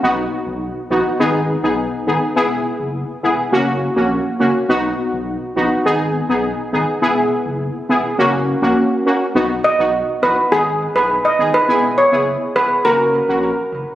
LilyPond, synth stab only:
\new Staff \with { instrumentName = "Synth stab" } { \time 4/4 \key b \major \tempo 4 = 103 <b dis' fis'>4. <b dis' fis'>8 <b dis' gis'>8. <b dis' gis'>8. <b dis' gis'>8 | <b e' gis'>4. <b e' gis'>8 <ais cis' fis'>8. <ais cis' fis'>8. <ais cis' fis'>8 | <b dis' fis'>4. <b dis' fis'>8 <b dis' gis'>8. <b dis' gis'>8. <b dis' gis'>8 | <b e' gis'>4. <b e' gis'>8 <ais cis' fis'>8. <ais cis' fis'>8. <ais cis' fis'>8 |
<b dis' fis'>16 r8 <b dis' fis'>8. <b dis' fis'>8 <b dis' gis'>8. <b dis' gis'>16 r8 <b dis' gis'>16 r16 | <b e' gis'>16 r8 <b e' gis'>8. <b e' gis'>8 <ais cis' fis'>8. <ais cis' fis'>16 r4 | }